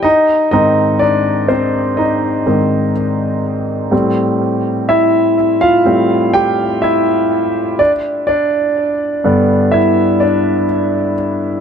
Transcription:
0.03 D#4 D#5
0.51 G#2 D#3 C4 D#4 D#5
0.99 D4 D5
1.48 C4 C5
1.97 D#4 D#5
2.46 G#2 D#3 C4
3.91 A2 G3 C4
4.89 E4 E5
5.61 F4 F5
5.85 A2 G3 C4
6.34 G4 G5
6.82 E4 E5
7.79 D4 D5
8.27 D4 D5
9.24 G2 D3 B3
9.72 E4 E5
10.20 D4 D5

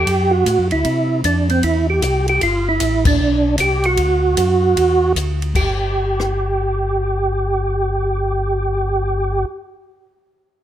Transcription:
Already playing: G4
0.06 F#2, kick, ride
0.31 F#4
0.46 A2, kick, hi-hat pedal, ride
0.58 F#2
0.71 D2 E4, ride
0.85 C3, kick, ride
1.24 F2 D4, kick, hi-hat pedal, ride
1.50 C4, ride
1.63 E2 E4, kick, ride
1.90 G4
2.01 C2 G4, kick, hi-hat pedal, ride
2.28 G4, ride
2.41 G1 F4, kick, ride
2.69 E4
2.80 A1, kick, hi-hat pedal, ride
3.05 D4, kick, crash
3.19 B1
3.58 C2 G4, kick, hi-hat pedal, ride
3.84 F#4, ride
3.97 D2, kick, ride
4.37 F#2, kick, hi-hat pedal, ride
4.76 E2, kick, ride
5.16 D2, kick, hi-hat pedal, ride
5.42 ride
5.55 G1 G4, kick, crash
6.20 cross-stick

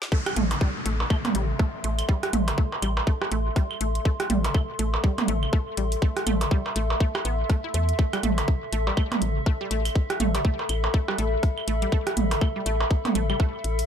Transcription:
0.02 snare
0.12 A3 A4, kick, downlifter
0.26 cross-stick, closed hi-hat, claves
0.36 A1 A3, closed hi-hat, mid tom
0.51 closed hi-hat, percussion blips
0.61 G3, kick
0.75 E5 C6
0.86 A1 A3, closed hi-hat
1.00 percussion blips
1.10 A3, kick, claves
1.25 closed hi-hat, mid tom, percussion blips
1.35 A1 G3, closed hi-hat
1.59 A3, kick, cross-stick
1.84 A1 A3, closed hi-hat
1.99 closed hi-hat, claves
2.09 G3, kick
2.23 cross-stick, closed hi-hat
2.33 A1 A3, closed hi-hat, mid tom
2.48 closed hi-hat, percussion blips
2.58 A3, kick
2.72 percussion blips
2.82 A1 G3, closed hi-hat, claves
2.97 percussion blips
3.07 A3, kick
3.22 cross-stick, percussion blips
3.32 A1 A3, closed hi-hat
3.56 G3, kick, cross-stick, closed hi-hat
3.71 claves
3.81 A1 A3, closed hi-hat
3.95 closed hi-hat
4.05 A3, kick
4.20 cross-stick, closed hi-hat
4.30 A1 G3, closed hi-hat, mid tom
4.44 closed hi-hat, percussion blips
4.54 A3, kick, claves
4.79 A1 A3, closed hi-hat
4.94 percussion blips
5.04 G3, kick
5.18 closed hi-hat, mid tom, percussion blips
5.28 A1 A3, closed hi-hat
5.43 claves
5.53 A3, kick, cross-stick
5.77 A1 G3, closed hi-hat
5.92 closed hi-hat
6.02 A3, kick
6.17 cross-stick, closed hi-hat
6.27 A1 A3, closed hi-hat, mid tom, claves
6.41 closed hi-hat, percussion blips
6.51 G3, kick
6.66 percussion blips
6.76 A1 A3, closed hi-hat
6.90 percussion blips
7.00 A3, kick
7.15 cross-stick, claves, percussion blips
7.25 A1 B3, closed hi-hat
7.50 A3, kick, cross-stick, closed hi-hat
7.64 E4
7.74 E2 A3, closed hi-hat
7.89 closed hi-hat
7.99 A3, kick
8.13 G3, cross-stick, closed hi-hat, claves
8.23 A1 A3, closed hi-hat, mid tom
8.38 closed hi-hat, percussion blips
8.48 kick
8.73 A1 A3, closed hi-hat
8.87 G3, percussion blips
8.97 A3, kick, claves
9.12 closed hi-hat, mid tom, percussion blips
9.22 A1, closed hi-hat
9.46 A3, kick, cross-stick
9.61 G3
9.71 A1 A3, closed hi-hat
9.85 B5, closed hi-hat, claves
9.95 kick
10.10 cross-stick, closed hi-hat
10.20 A1 A3, closed hi-hat, mid tom
10.35 G3, closed hi-hat, percussion blips
10.45 A3, kick
10.59 percussion blips
10.69 A1, closed hi-hat, claves
10.84 percussion blips
10.94 A3, kick
11.08 G3, cross-stick, percussion blips
11.18 A1 A3, closed hi-hat
11.43 kick, cross-stick, closed hi-hat
11.58 claves
11.68 A1 A3, closed hi-hat
11.82 G3, closed hi-hat
11.92 A3, kick
12.07 cross-stick, closed hi-hat
12.17 A1, closed hi-hat, mid tom
12.31 closed hi-hat, percussion blips
12.41 A3, kick, claves
12.56 G3
12.66 A1 A3, closed hi-hat
12.80 percussion blips
12.91 kick
13.05 closed hi-hat, mid tom, percussion blips
13.15 A1 A3, closed hi-hat
13.30 G3, claves
13.40 A3, kick, cross-stick
13.64 A1, closed hi-hat
13.79 closed hi-hat

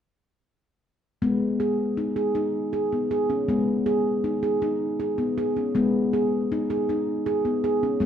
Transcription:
1.22 G#3 B3
1.60 G#4
1.97 D#4
2.16 G#4
2.35 D#4
2.73 G#4
2.92 B3
3.11 G#4
3.30 C#4
3.48 G#3 B3
3.86 G#4
4.24 D#4
4.43 G#4
4.62 D#4
5.00 G#4
5.18 B3
5.38 G#4
5.57 C#4
5.75 G#3 B3
6.13 G#4
6.52 D#4
6.70 G#4
6.89 D#4
7.26 G#4
7.45 B3
7.64 G#4
7.83 C#4
8.00 G#3 B3

